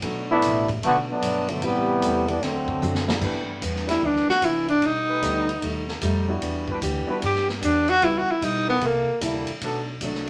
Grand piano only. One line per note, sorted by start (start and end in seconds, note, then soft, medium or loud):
0.03 0.26 F#3 soft
0.03 0.26 A3 soft
0.03 0.26 B3 soft
0.03 0.26 D4 soft
0.03 0.26 F#4 medium
2.03 2.26 G3 medium
2.03 2.26 A3 medium
2.03 2.26 B3 medium
2.03 2.26 C4 medium
2.03 2.26 E4 medium
3.08 3.59 G3 medium
3.08 3.59 A3 soft
3.08 3.59 B3 medium
3.08 3.60 D4 medium
3.08 3.60 E4 medium
3.87 4.00 G3 medium
3.87 4.01 A3 medium
3.87 4.01 B3 medium
3.87 4.01 D4 medium
3.87 4.01 E4 medium
5.21 5.45 G3 medium
5.21 5.45 A3 medium
5.21 5.46 B3 soft
5.21 5.46 D4 medium
5.21 5.46 D#4 medium
6.28 6.79 G3 medium
6.28 6.79 B3 medium
6.28 6.79 D4 medium
6.28 6.80 E4 medium
6.28 6.79 F#4 medium
7.07 7.20 G3 medium
7.07 7.20 B3 medium
7.07 7.21 D4 medium
7.07 7.21 E4 medium
7.07 7.21 F#4 medium
8.02 8.26 E3 medium
8.02 8.26 B3 soft
8.02 8.26 C#4 medium
8.02 8.26 D#4 soft
8.02 8.26 G4 medium
9.21 9.45 G3 medium
9.21 9.45 A#3 medium
9.21 9.45 D4 soft
9.21 9.45 E4 medium
9.21 9.45 A4 medium